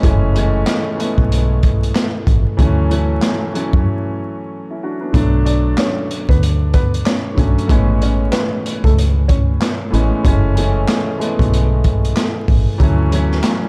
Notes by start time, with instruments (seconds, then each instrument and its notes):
0.01 fingered electric bass F#1, grand piano E3 G#3 A3, kick, closed hi-hat
0.06 grand piano C#4
0.34 grand piano E3 G#3 A3, closed hi-hat
0.39 grand piano C#4
0.67 snare, clap, closed hi-hat
0.97 grand piano E3 G#3 A3, closed hi-hat
1.01 grand piano B3
1.18 fingered electric bass B1, kick
1.32 closed hi-hat
1.63 kick, closed hi-hat
1.83 closed hi-hat
1.95 snare, clap, closed hi-hat
2.27 fingered electric bass A1, kick, closed hi-hat
2.57 fingered electric bass D2, grand piano E3 F#3 A3, kick, closed hi-hat
2.61 grand piano C#4
2.89 grand piano E3 F#3 A3, closed hi-hat
2.94 grand piano C#4
3.22 snare, clap, closed hi-hat
3.52 grand piano E3 F#3 A3, closed hi-hat
3.57 grand piano C#4
3.73 fingered electric bass F#2, kick
4.70 grand piano C#4 E4
4.83 grand piano D4 F#4
5.01 grand piano B3 D4
5.12 fingered electric bass B1, grand piano D3 F#3 A3, kick, closed hi-hat
5.16 grand piano D4
5.45 upright piano D4 D5, closed hi-hat
5.78 upright piano C#4 C#5, snare, clap, closed hi-hat
6.11 closed hi-hat
6.29 fingered electric bass D2, upright piano B3 B4, kick, closed hi-hat
6.43 closed hi-hat
6.74 upright piano B3 B4, kick, closed hi-hat
6.94 closed hi-hat
7.06 upright piano C#4 C#5, snare, clap, closed hi-hat
7.34 fingered electric bass B1, grand piano D3 F#3 A3, kick, closed hi-hat
7.39 grand piano C#4
7.58 closed hi-hat
7.67 fingered electric bass A1, grand piano A2 E3 G#3 B3, kick, closed hi-hat
7.72 grand piano C#4
8.02 upright piano C#4 C#5, closed hi-hat
8.32 upright piano B3 B4, snare, clap, closed hi-hat
8.66 closed hi-hat
8.84 fingered electric bass C#2, upright piano A3 A4, kick, closed hi-hat
8.98 closed hi-hat
9.28 upright piano C#4 C#5, kick, closed hi-hat
9.62 snare, clap, closed hi-hat
9.91 fingered electric bass A1, grand piano A2 E3 G#3 B3, closed hi-hat
9.95 grand piano C#4
10.23 fingered electric bass F#1, grand piano E3 G#3 A3, kick, closed hi-hat
10.27 grand piano C#4
10.55 grand piano E3 G#3 A3, closed hi-hat
10.60 grand piano C#4
10.88 snare, clap, closed hi-hat
11.18 grand piano E3 G#3 A3, closed hi-hat
11.22 grand piano B3
11.39 fingered electric bass B1, kick, closed hi-hat
11.54 closed hi-hat
11.84 kick, closed hi-hat
12.05 closed hi-hat
12.17 snare, clap, closed hi-hat
12.48 fingered electric bass A1, kick, open hi-hat
12.78 fingered electric bass D2, grand piano E3 F#3 A3, kick, closed hi-hat
12.83 grand piano C#4
13.10 grand piano E3 F#3 A3, closed hi-hat
13.15 grand piano C#4
13.32 snare
13.44 snare, clap, closed hi-hat